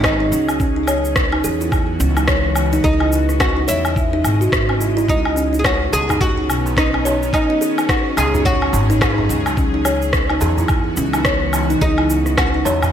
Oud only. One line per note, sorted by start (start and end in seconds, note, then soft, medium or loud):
0.04 0.46 D#4 medium
2.84 3.40 D#4 loud
3.40 3.68 F#4 loud
3.68 4.77 E4 medium
5.09 5.59 D#4 loud
5.59 5.65 G#4 medium
5.66 5.93 F#4 loud
5.93 6.20 G#4 loud
6.21 6.77 F#4 loud
6.78 7.19 D#4 medium
7.34 7.89 D#4 medium
7.89 8.17 F#4 medium
8.18 8.43 G#4 medium
8.46 8.97 F#4 loud
9.02 9.43 D#4 medium
11.81 12.38 D#4 loud
12.38 12.90 F#4 loud